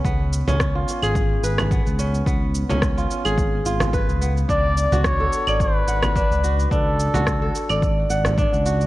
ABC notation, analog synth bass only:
X:1
M:4/4
L:1/16
Q:"Swing 16ths" 1/4=108
K:none
V:1 name="Analog synth bass" clef=bass
^C,,3 C,,3 z ^G,,,3 G,,,3 C,,3 | ^C,,3 C,,3 z ^G,,,3 G,,,3 C,,3 | ^C,,3 C,,3 z ^G,,,3 G,,,3 C,,3 | ^C,,3 C,,3 z ^G,,,3 G,,,3 C,,3 |]